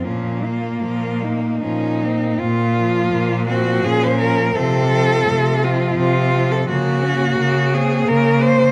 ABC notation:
X:1
M:3/4
L:1/16
Q:1/4=84
K:Bbm
V:1 name="Cello"
B,8 E4 | F6 G2 A c B2 | =A6 F2 F3 A | G6 A2 B2 c2 |]
V:2 name="Cello"
D2 F2 F2 E2 D2 C2 | z4 B,2 C2 D4 | C4 =A,2 C6 | B,2 D2 B,2 C2 B,4 |]
V:3 name="Cello" clef=bass
F,2 B,2 F,2 B,2 F,2 B,2 | z2 F,4 F,4 F,2 | F,2 F,4 F,4 F,2 | z2 B,4 B,4 B,2 |]
V:4 name="Cello" clef=bass
B,,4 B,,4 B,,4 | B,,4 B,,4 B,,4 | C,4 C,4 C,4 | D,4 D,4 D,4 |]